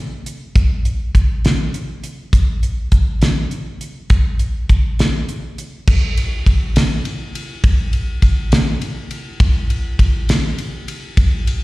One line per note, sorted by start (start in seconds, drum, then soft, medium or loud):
0.26 closed hi-hat medium
0.56 kick medium
0.56 closed hi-hat medium
0.85 closed hi-hat medium
1.15 kick medium
1.15 closed hi-hat medium
1.45 snare medium
1.45 closed hi-hat medium
1.74 closed hi-hat medium
2.04 closed hi-hat medium
2.33 kick medium
2.33 closed hi-hat medium
2.63 closed hi-hat medium
2.92 kick medium
2.92 closed hi-hat medium
3.22 snare medium
3.22 closed hi-hat medium
3.51 closed hi-hat soft
3.81 closed hi-hat medium
4.10 kick medium
4.10 closed hi-hat medium
4.39 closed hi-hat medium
4.69 kick medium
4.69 closed hi-hat soft
4.99 snare medium
4.99 closed hi-hat medium
5.29 closed hi-hat medium
5.58 closed hi-hat medium
5.88 kick loud
5.88 crash medium
6.17 ride medium
6.46 kick medium
6.46 ride medium
6.76 snare medium
6.76 ride medium
7.05 ride medium
7.35 ride medium
7.64 kick loud
7.64 ride medium
7.93 ride medium
8.22 kick medium
8.22 ride medium
8.52 snare loud
8.52 ride medium
8.81 ride medium
9.11 ride medium
9.40 kick loud
9.40 ride medium
9.70 ride medium
9.99 kick medium
9.99 ride medium
10.29 snare loud
10.29 ride medium
10.58 ride medium
10.88 ride medium
11.17 kick loud
11.17 ride medium
11.47 ride medium